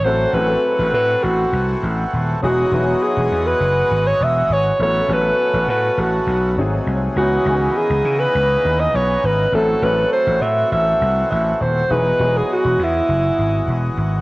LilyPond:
<<
  \new Staff \with { instrumentName = "Alto saxophone" } { \time 4/4 \key a \lydian \tempo 4 = 101 c''8 b'4 b'8 fis'4 r4 | fis'4 gis'8. b'4 cis''16 e''8 cis''8 | cis''8 b'4 b'8 fis'4 r4 | fis'4 gis'8. b'4 dis''16 cis''8 b'8 |
a'8 b'8 c''8 e''8 e''4 e''8 c''8 | b'8. gis'16 fis'8 e'2 r8 | }
  \new Staff \with { instrumentName = "Grand piano" } { \time 4/4 \key a \lydian <fis a c' e' a'>8 <fis a c' e' gis' a'>2 r4. | <fis b dis' e' gis'>8 <fis b dis' e' fis' gis'>2 r4. | <fis b cis' e' a'>8 <fis b cis' e' a'>2 r8 <fis a bis dis' gis'>4 | <e b cis' dis' gis'>8 <dis e b cis' dis' gis'>2 r4. |
<fis a c' e' a'>8 <fis a c' e' gis' a'>2 r4. | <fis b dis' e' gis'>8 <fis b e' gis' dis''>2 r4. | }
  \new Staff \with { instrumentName = "Accordion" } { \time 4/4 \key a \lydian fis'1 | fis'1 | fis'1 | dis'1 |
fis'1~ | fis'1 | }
  \new Staff \with { instrumentName = "Accordion" } { \time 4/4 \key a \lydian << { <a c'>1 | <gis dis''>1 | <a b>2. gis'4 | <e b>1 |
<a c'>1 | <gis dis''>1 | } \\ { e1 | e1 | cis2. bis,4 | cis1 |
e1~ | e1 | } >> }
  \new Staff \with { instrumentName = "Slap bass" } { \clef bass \time 4/4 \key a \lydian a,,8 a,,8 r16 a,,16 a,8 a,,8 c,8 a,,8 dis,,8 | e,,8 e,,8 r16 e,,16 e,8 fis,,8 gis,,8 e,,8 gis,,8 | a,,8 a,,8 r16 a,,16 a,8 a,,8 b,,8 gis,,8 bis,,8 | cis,8 cis,8 r16 cis,16 cis8 cis,8 dis,8 b,,8 gis,,8 |
a,,8 a,,8 r16 a,,16 a,8 a,,8 c,8 a,,8 dis,,8 | e,,8 e,,8 r16 e,,16 e,8 fis,,8 gis,,8 e,,8 gis,,8 | }
>>